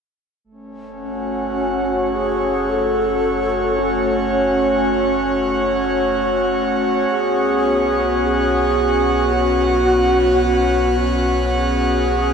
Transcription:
0.44 F#1 A3
0.51 C#4
0.93 F#5
1.00 C#4 F#4
1.41 C#5
2.12 G#4
2.69 A4
3.78 C#4
7.10 B1 B3 G#4
8.22 G#4
9.33 F#4
10.45 F#4
11.55 G#4

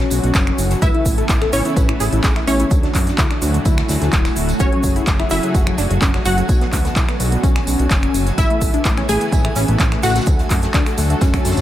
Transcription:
Already playing: B2 D3 F#3 A3 C#4 F#4 G#5
0.00 snare
0.10 B1, open hi-hat, tambourine, shaker
0.24 B1, closed hi-hat, shaker
0.34 F#1, kick, snare, clap, closed hi-hat, tambourine, shaker
0.47 finger snap, closed hi-hat
0.58 F#1, open hi-hat, tambourine, shaker
0.70 snare, closed hi-hat, shaker
0.82 A1 C#3 E3 A3 B3 E4 B4 E5, kick, closed hi-hat, tambourine, shaker
0.94 E4, closed hi-hat
1.05 A1 E4, kick, open hi-hat, tambourine, shaker
1.18 A4, closed hi-hat, shaker
1.29 A1 E4, kick, snare, clap, closed hi-hat, tambourine, shaker
1.41 A4, finger snap, snare, closed hi-hat
1.53 A1 C#4 E4 C#5, open hi-hat, tambourine, shaker
1.65 E4, closed hi-hat, shaker
1.76 A1 B4, kick, closed hi-hat, tambourine, shaker
1.89 E4, finger snap, closed hi-hat
2.00 A1 G#4, snare, open hi-hat, tambourine, shaker
2.12 A1 E4, closed hi-hat, shaker
2.24 A1 G#4, kick, snare, clap, closed hi-hat, tambourine, shaker
2.36 E4, finger snap, snare, closed hi-hat
2.47 A1 C#4 E4 C#5, open hi-hat, tambourine, shaker
2.59 E4, closed hi-hat, shaker
2.71 D2 A2 D3 F#3 A3 F#4, kick, closed hi-hat, tambourine, shaker
2.83 D4, snare, closed hi-hat
2.94 F#2 D4, kick, clap, open hi-hat, tambourine, shaker
3.07 D4, snare, closed hi-hat, shaker
3.18 D2 E4, kick, snare, clap, closed hi-hat, tambourine, shaker
3.31 D4, finger snap, snare, closed hi-hat
3.42 D2 D4, open hi-hat, tambourine, shaker
3.54 D4, closed hi-hat, shaker
3.65 D2 E4, kick, closed hi-hat, tambourine, shaker
3.78 finger snap, snare, closed hi-hat
3.88 D2, snare, open hi-hat, tambourine, shaker
4.01 D2, snare, closed hi-hat, shaker
4.13 D1, kick, clap, closed hi-hat, tambourine, shaker
4.25 finger snap, snare, closed hi-hat, tambourine
4.36 D1, snare, open hi-hat, shaker
4.49 closed hi-hat, tambourine, shaker
4.59 F#1 C#3 A3 C#4 F#4 G#4 C#5, kick, closed hi-hat, tambourine, shaker
4.72 F#3, closed hi-hat
4.83 F#1 F#3, kick, open hi-hat, tambourine, shaker
4.96 E4, closed hi-hat, shaker
5.07 F#1 F#3, kick, snare, clap, closed hi-hat, tambourine, shaker
5.20 E4, finger snap, snare, closed hi-hat
5.30 F#1 F#3 E4 E5, open hi-hat, tambourine, shaker
5.43 F#3, closed hi-hat, shaker
5.54 F#1 F#4, kick, closed hi-hat, tambourine, shaker
5.67 F#3, finger snap, closed hi-hat
5.78 F#1 D4, snare, open hi-hat, tambourine, shaker
5.90 F#1 F#3, closed hi-hat, shaker
6.01 F#1 C#4, kick, snare, clap, closed hi-hat, tambourine, shaker
6.14 F#3, finger snap, snare, closed hi-hat
6.25 F#1 F#3 F#4 F#5, open hi-hat, tambourine, shaker
6.38 F#3, closed hi-hat, shaker
6.49 B1 B2 D3, kick, closed hi-hat, tambourine, shaker
6.61 B3, snare, closed hi-hat
6.72 D2 B3, kick, clap, open hi-hat, tambourine, shaker
6.85 B3, snare, closed hi-hat, shaker
6.96 B1 E4, kick, snare, clap, closed hi-hat, tambourine, shaker
7.09 B3, finger snap, snare, closed hi-hat
7.20 B1 B3, open hi-hat, tambourine, shaker
7.32 B3, closed hi-hat, shaker
7.43 B1 C#4, kick, closed hi-hat, tambourine, shaker
7.56 finger snap, snare, closed hi-hat
7.67 B1, open hi-hat, tambourine, shaker
7.79 B1, closed hi-hat, shaker
7.90 F#1, kick, snare, clap, closed hi-hat, tambourine, shaker
8.03 finger snap, closed hi-hat
8.14 F#1, open hi-hat, tambourine, shaker
8.26 snare, closed hi-hat, shaker
8.38 A1 C#3 E3 A3 B3 E4 E5, kick, closed hi-hat, tambourine, shaker
8.50 A3, closed hi-hat
8.61 A1 A3, kick, open hi-hat, tambourine, shaker
8.73 D4, closed hi-hat, shaker
8.85 A1 A3, kick, snare, clap, closed hi-hat, tambourine, shaker
8.97 C#4, finger snap, snare, closed hi-hat
9.09 A1 A3 G#4 G#5, open hi-hat, tambourine, shaker
9.21 A3, closed hi-hat, shaker
9.32 A1 E4, kick, closed hi-hat, tambourine, shaker
9.45 A3, finger snap, closed hi-hat
9.56 A1 C#4, snare, open hi-hat, tambourine, shaker
9.68 A1 A3, closed hi-hat, shaker
9.79 A1 C#4, kick, snare, clap, closed hi-hat, tambourine, shaker
9.92 A3, finger snap, snare, closed hi-hat
10.03 A1 A3 F#4 F#5, snare, open hi-hat, tambourine, shaker
10.09 snare, tambourine
10.15 A3, snare, closed hi-hat, tambourine, shaker
10.21 snare, tambourine
10.26 D2 D3 F#3 F#4 A4, kick, closed hi-hat, tambourine, shaker
10.39 A3, snare, closed hi-hat, shaker
10.50 F#2 A3, kick, clap, open hi-hat, tambourine, shaker
10.62 A3, snare, closed hi-hat, shaker
10.74 D2 D4, kick, snare, clap, closed hi-hat, tambourine, shaker
10.86 A3, finger snap, snare, closed hi-hat, shaker
10.97 D2 A3, open hi-hat, tambourine, shaker
11.10 A3, closed hi-hat, shaker
11.21 F#2 C#4, kick, snare, closed hi-hat, tambourine, shaker
11.33 finger snap, kick, snare, closed hi-hat, shaker
11.44 F#2, snare, open hi-hat, tambourine, shaker
11.51 snare, tambourine
11.57 F#2, snare, closed hi-hat, tambourine, shaker

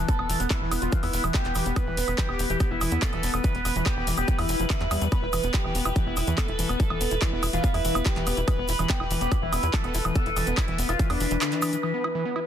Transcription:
Already playing: B4
0.09 B3 A4, kick, closed hi-hat, shaker
0.19 E1 B3, high woodblock
0.29 E1 E3, open hi-hat, shaker
0.40 E1 B3, closed hi-hat, shaker
0.50 B3 E4, kick, clap, closed hi-hat, high woodblock, shaker
0.61 E1 E3
0.71 E1 B3, open hi-hat, high woodblock, shaker
0.82 E1 B3 F4, closed hi-hat, shaker
0.92 E3, kick, closed hi-hat, shaker
1.03 E2 B3 E4, open hi-hat, high woodblock
1.13 E1 B3, open hi-hat, shaker
1.24 E1 E3, closed hi-hat, high woodblock, shaker
1.34 B3 G4, kick, clap, closed hi-hat, shaker
1.45 E1 B3, clap, closed hi-hat
1.55 E1 E3, open hi-hat, high woodblock, shaker
1.66 E1 B3, closed hi-hat, shaker
1.76 B3 B4, kick, closed hi-hat, high woodblock, shaker
1.87 E1 E3
1.97 E1 B3, open hi-hat, shaker
2.08 E1 B3, closed hi-hat, high woodblock, shaker
2.18 E3 G4, kick, clap, closed hi-hat, shaker
2.29 E1 B3, high woodblock
2.39 E1 B3, open hi-hat, shaker
2.50 E1 E3 G4, closed hi-hat, shaker
2.60 B3, kick, closed hi-hat, high woodblock, shaker
2.71 E1 B3 E4
2.81 E1 E3, open hi-hat, high woodblock, shaker
2.91 E2 B3, closed hi-hat, shaker
3.02 A4, kick, clap, closed hi-hat, shaker
3.13 E1 E3, closed hi-hat, high woodblock
3.23 E1 B3, open hi-hat, shaker
3.33 E1 B3, closed hi-hat, high woodblock, shaker
3.44 E3 B4, kick, closed hi-hat, shaker
3.55 E1 B3, closed hi-hat
3.65 E1 B3, open hi-hat, high woodblock, shaker
3.76 E1 E3, closed hi-hat, shaker
3.86 B3 G4, kick, clap, closed hi-hat, high woodblock, shaker
3.97 E1 B3
4.07 E1 E3, open hi-hat, shaker
4.17 E1 B3 G4, closed hi-hat, high woodblock, shaker
4.28 B3, kick, closed hi-hat, shaker
4.39 E2 E3 E4, open hi-hat, high woodblock
4.49 E1 E3, open hi-hat, shaker
4.60 F1 F3, closed hi-hat, shaker
4.70 D3 E4, kick, clap, closed hi-hat, high woodblock, shaker
4.81 E2 E3, clap, closed hi-hat
4.91 E2 G3, open hi-hat, high woodblock, shaker
5.01 E2 G3, closed hi-hat, shaker
5.12 B3 B4, kick, closed hi-hat, high woodblock, shaker
5.22 E1 E4
5.33 E1 E3, open hi-hat, high woodblock, shaker
5.43 E1 B3, closed hi-hat, shaker
5.53 E4 G4, kick, clap, closed hi-hat, shaker
5.64 E1 E3, high woodblock
5.75 E1 B3, open hi-hat, shaker
5.85 E1 E4 G4, closed hi-hat, high woodblock, shaker
5.96 E3, kick, closed hi-hat, shaker
6.06 E1 B3 E4
6.16 E1 E4, open hi-hat, high woodblock, shaker
6.27 E2 E3, closed hi-hat, shaker
6.38 A4, kick, clap, closed hi-hat, high woodblock, shaker
6.48 E1 E4, closed hi-hat
6.59 E1 E3, open hi-hat, shaker
6.69 E1 B3, closed hi-hat, high woodblock, shaker
6.80 E4 A4, kick, closed hi-hat, shaker
6.90 E1 E3, high woodblock
7.01 E1 B3, open hi-hat, shaker
7.11 E1 E4, closed hi-hat, shaker
7.22 E3 E4, kick, clap, closed hi-hat, high woodblock, shaker
7.32 E1 B3
7.43 E1 E4, open hi-hat, high woodblock, shaker
7.53 E1 E3 F4, closed hi-hat, shaker
7.64 B3, kick, closed hi-hat, shaker
7.74 E2 E4, open hi-hat, high woodblock
7.85 E1 E3, open hi-hat, shaker
7.95 E1 B3, closed hi-hat, high woodblock, shaker
8.05 E4 G4, kick, clap, closed hi-hat, shaker
8.16 E1 E3, clap, closed hi-hat
8.27 E1 B3, open hi-hat, high woodblock, shaker
8.37 E1 E4, closed hi-hat, shaker
8.48 E3 B4, kick, closed hi-hat, high woodblock, shaker
8.58 E1 B3
8.68 E1 E4, open hi-hat, shaker
8.79 E1 E3, closed hi-hat, high woodblock, shaker
8.89 G4, kick, clap, closed hi-hat, shaker
9.00 E1 E4, high woodblock
9.11 E1 E3, open hi-hat, shaker
9.21 E1 B3 G4, closed hi-hat, shaker
9.32 E4, kick, closed hi-hat, high woodblock, shaker
9.42 E1 E3 E4
9.53 E1 B3, open hi-hat, high woodblock, shaker
9.63 E2 E4, closed hi-hat, shaker
9.74 E3 A4, kick, clap, closed hi-hat, shaker
9.84 E1 B3, closed hi-hat, high woodblock
9.94 E1 E4, open hi-hat, shaker
10.05 E1 E3, closed hi-hat, high woodblock, shaker
10.15 B3 A4, kick, closed hi-hat, shaker
10.26 E1 E4, closed hi-hat
10.36 E1 E3, open hi-hat, high woodblock, shaker
10.47 E1 B3, closed hi-hat, shaker
10.57 E4, kick, clap, closed hi-hat, high woodblock, shaker
10.68 E1 E3, closed hi-hat
10.78 E1 B3, open hi-hat, shaker
10.88 E1 E4 F4, closed hi-hat, high woodblock, shaker
10.99 E3, kick, closed hi-hat, shaker
11.10 E2 B3 D4, open hi-hat, high woodblock
11.20 E1 E3, open hi-hat, shaker
11.31 E1 E3, closed hi-hat, shaker
11.41 D3 D4, clap, closed hi-hat, high woodblock, shaker
11.52 E3, clap, closed hi-hat
11.62 E3, open hi-hat, high woodblock, shaker
11.73 E3, closed hi-hat, shaker
11.83 E3 B4, high woodblock
11.94 B3
12.04 E4, high woodblock
12.15 E3
12.25 B3
12.36 E4, high woodblock

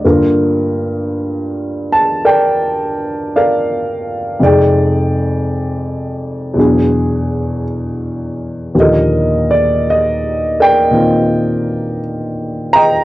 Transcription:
Already playing: D5
0.05 G2 D3 A#3 F4 A#4
1.92 A5
2.25 A#4 D5 G5
3.36 A#4 D5 F5
4.39 F2 C3 G#3 D#4 D5
4.45 G#4 G5
6.54 E2 B2 F#3
6.58 D4 G#4
8.75 D#2 A#2 D3 F3 G4
8.80 G4 A#4 D#5
9.51 D5
9.90 D#5
10.60 A#4 D5 G5
10.91 A#2 D#3 C4 F4
12.73 D#5 G5 A#5

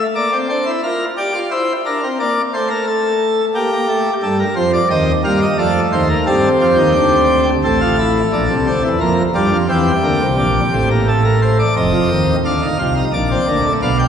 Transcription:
0.15 A#3 D5
0.33 C4
0.49 D4 C5
0.66 E4
0.84 F4 A#4
1.18 G4 D5
1.35 F4
1.51 E4 C5
1.86 D4 A#4
2.03 C4
2.20 A#3 D5
2.54 A3 C5
2.70 A#4
2.87 A4
3.55 A#3 G4
3.72 A#3
3.89 A3
4.23 G2 G3 A4
4.40 A#4
4.56 F2 F3 C5
4.74 D5
4.90 D#2 D#3 C4 D#5
5.24 G2 G3 A#3 F5
5.42 D#5
5.58 F2 F3 A3 D5
5.93 D#2 D#3 C5
6.09 A#4
6.27 G2 G3 C4 A4
6.61 F2 F3 G4
6.78 D#2 D#3
6.96 D2 D3
7.64 A1 A2 C4 A4
7.81 F4
7.99 E4
8.33 A#1 A#2 D4
8.50 C2 C3
8.67 D2 D3 C4
8.84 E2 E3
9.01 F2 F3 A#3 A#4
9.35 G2 G3 D4 F4
9.52 F2 F3
9.69 E2 E3 C4 G4
10.04 D2 D3 A#3
10.21 C2 C3
10.39 A#1 A#2 D4
10.73 A1 A2 C4
10.91 A#3
11.08 A3 A4
11.25 A#4
11.42 C5
11.59 D5
11.76 F1 F2 C4 D#5
11.94 F2 F3
12.11 D#2 D#3
12.45 D2 D3 D4 F5
12.62 D#4
12.79 C2 C3 F4
12.97 D#4
13.13 A#1 A#2 D4 D5
13.31 C4
13.48 D2 D3 A#3
13.66 A3
13.82 B1 B2 D4 F5
13.99 G5

